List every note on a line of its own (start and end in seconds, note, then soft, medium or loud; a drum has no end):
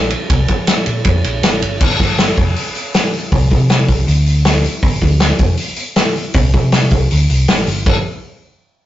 0.00 0.12 A#1 loud
0.10 ride medium
0.30 0.45 C2 medium
0.30 kick loud
0.30 ride medium
0.48 kick medium
0.48 ride medium
0.67 snare loud
0.67 ride medium
0.86 1.01 A#2 medium
0.86 ride medium
1.05 1.20 F2 loud
1.05 kick loud
1.05 ride medium
1.24 1.42 A#1 medium
1.24 ride medium
1.43 1.60 A1 medium
1.43 snare loud
1.43 ride medium
1.62 1.79 G1 medium
1.62 ride medium
1.81 1.96 G1 loud
1.81 kick loud
1.81 crash loud
2.00 2.29 G1 medium
2.00 kick medium
2.00 snare soft
2.00 open hi-hat soft
2.18 snare loud
2.18 open hi-hat medium
2.38 2.52 F1 medium
2.38 kick loud
2.38 open hi-hat soft
2.56 open hi-hat medium
2.75 open hi-hat medium
2.94 snare loud
2.94 open hi-hat medium
3.13 open hi-hat soft
3.32 3.53 C2 medium
3.32 kick loud
3.32 open hi-hat medium
3.51 3.90 C3 medium
3.51 kick medium
3.51 open hi-hat soft
3.70 snare loud
3.70 open hi-hat medium
3.88 4.03 C2 medium
3.88 kick medium
3.88 open hi-hat medium
4.07 4.65 D2 loud
4.07 open hi-hat medium
4.26 open hi-hat medium
4.45 snare loud
4.45 open hi-hat medium
4.64 open hi-hat medium
4.83 4.98 G1 medium
4.83 kick loud
4.83 open hi-hat medium
5.01 5.31 D2 medium
5.01 kick medium
5.01 open hi-hat medium
5.20 snare loud
5.20 open hi-hat medium
5.39 5.54 F1 medium
5.39 kick loud
5.39 open hi-hat medium
5.57 open hi-hat medium
5.76 open hi-hat medium
5.96 snare loud
5.96 open hi-hat medium
6.16 open hi-hat medium
6.34 6.56 C2 medium
6.34 kick loud
6.34 open hi-hat medium
6.54 6.93 C3 medium
6.54 kick medium
6.54 open hi-hat soft
6.72 snare loud
6.72 open hi-hat medium
6.91 7.06 C2 medium
6.91 kick medium
6.91 open hi-hat medium
7.11 7.26 D2 loud
7.11 open hi-hat medium
7.30 7.46 C2 medium
7.30 open hi-hat medium
7.48 7.65 A1 medium
7.48 snare loud
7.48 open hi-hat medium
7.67 7.84 G1 medium
7.67 open hi-hat medium
7.86 8.03 G1 medium
7.86 kick loud
7.86 crash medium